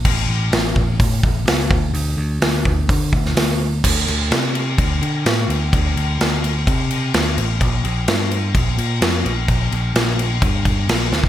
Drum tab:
CC |x---------------|----------------|x-x-x-x-x-x-x-x-|x-x-x-x-x-x-x-x-|
HH |----o---o---o---|o---o---o---o---|----------------|----------------|
SD |----o-------o---|----o------oo---|----o-------o---|----o-------o---|
BD |o-----o-o-o---o-|------o-o-o-----|o-------o-------|o-------o-------|

CC |x-x-x-x-x-x-x-x-|x-x-x-x-x-x-x---|
HH |----------------|----------------|
SD |----o-------o---|----o-------o-o-|
BD |o-------o-------|o-------o-o----o|